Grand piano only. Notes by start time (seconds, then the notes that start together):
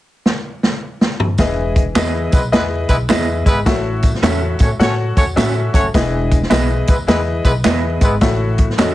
1.39 E3 E4 G#4 B4 D#5
1.96 E4 G#4 B4 D#5
2.52 E4 G#4 B4 D#5
3.10 E4 G#4 B4 D#5
3.66 A2 F#4 A4 C#5 E5
4.23 F#4 A4 C#5 E5
4.79 F#4 A4 C#5 F#5
5.36 F#4 A4 C#5 E5
5.94 E3 E4 G#4 B4 D#5
6.50 E4 G#4 B4 D#5
7.08 E4 G#4 B4 D#5
7.64 E4 G#4 B4 D#5
8.21 A2 F#4 A4 C#5 E5
8.78 F#4 A4 C#5 D#5